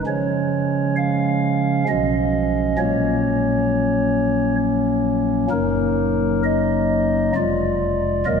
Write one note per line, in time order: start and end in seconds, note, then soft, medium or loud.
0.06 1.84 C#3 medium
0.06 1.85 F3 medium
0.06 1.84 G#3 medium
0.06 1.84 C#4 medium
0.06 0.95 C#5 loud
0.97 1.85 F5 loud
1.88 2.76 B1 medium
1.88 2.76 B2 medium
1.88 2.76 F3 medium
1.88 2.77 G#3 medium
1.88 2.76 C#4 medium
1.88 2.76 D#5 loud
2.78 5.47 A#1 medium
2.78 5.47 A#2 medium
2.78 5.46 F#3 medium
2.78 5.46 A#3 medium
2.78 5.46 C#4 medium
2.78 4.55 C#5 loud
5.50 7.31 F#1 medium
5.50 7.31 F#2 medium
5.50 7.31 F#3 medium
5.50 7.31 A#3 medium
5.50 7.31 D#4 medium
5.50 6.42 A#4 loud
6.44 7.33 D#5 loud
7.35 8.24 F1 medium
7.35 8.24 F2 medium
7.35 8.24 G#3 medium
7.35 8.24 F4 medium
7.35 8.24 D5 loud
8.26 8.40 D#1 medium
8.26 8.40 D#2 medium
8.26 8.40 F#3 medium
8.26 8.40 A#3 medium
8.26 8.40 A#4 medium
8.26 8.40 D#5 loud